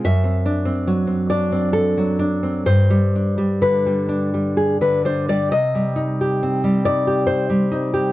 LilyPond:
\new Staff \with { instrumentName = "Nylon-string guitar" } { \time 3/4 \key c \minor \tempo 4 = 67 << { e''4. d''8 a'4 | c''4 b'4 aes'16 b'16 c''16 d''16 | ees''4. d''8 c''4 | } \\ { fis,16 c'16 d'16 c'16 fis16 c'16 d'16 c'8 fis16 d'16 c'16 | g,16 g16 d'16 g16 d16 g16 d'16 g8 d16 d'16 g16 | c16 g16 ees'16 g'16 c'16 g16 ees'16 g'8 g16 ees'16 g'16 | } >> }